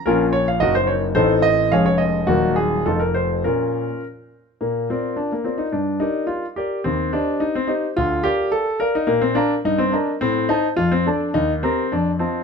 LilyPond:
\new Staff \with { instrumentName = "Grand piano" } { \time 2/4 \key bes \minor \tempo 4 = 106 << { <bes,, bes, f bes>4 <ges,, ges, bes ees'>4 | <a,, a, a c'>4 <f,, f, aes des'>4 | <ees,, ees, ges>4 <f,, f, f a>4 | <bes, bes>4 r4 |
\key bes \major bes,8 <f' bes' d''>4 <f' bes' d''>8 | g,8 <g' bes' d''>4 <bes' d''>8 | ees,8 <g' c'' ees''>4 <g' c'' ees''>8 | d,8 <bes' d'' f''>4 <d'' f''>8 |
bes,8 <bes' f'' bes''>8 g,8 <bes' ees'' bes''>8 | a,8 <c'' ees'' a''>8 f,8 <a' d'' a''>8 | ees,8 <g' bes' bes''>8 f,8 <f' ees'' a''>8 | } \\ { <des' f' bes'>8 des''16 f''16 <ges' bes' ees''>16 c''16 des''8 | <ees' a' c''>8 ees''8 <aes' des'' f''>16 des''16 ees''8 | <bes ees' ges'>8 aes'8 <ees' f' a'>16 bes'16 c''8 | <des' f' bes'>4 r4 |
bes8 c'8 d'16 bes16 c'16 ees'16 | d'8 ees'8 f'8 g'8 | c'8 d'8 ees'16 c'16 ees'8 | f'8 g'8 a'8 bes'16 ees'16 |
bes16 c'16 d'8 ees'16 c'16 d'8 | c'8 ees'8 f'16 c'16 d'8 | ees'8 c'8 d'8 c'8 | } >> }